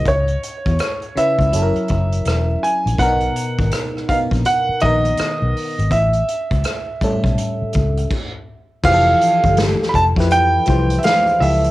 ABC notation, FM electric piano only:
X:1
M:4/4
L:1/16
Q:"Swing 16ths" 1/4=82
K:Flyd
V:1 name="FM electric piano"
z6 [^C,^CEB]2 [^F,CEA^A]6- [F,CE=A^A] z | [B,,B,D^D^A]4- [B,,B,=D^DA] z [B,,B,DA]4 [^D,B,DA]6 | z6 [A,,G,^CA]6 z4 | [E,F,G^GA]6 z [F,E=GB]3 [F,EGc]4 [F,EGA]2 |]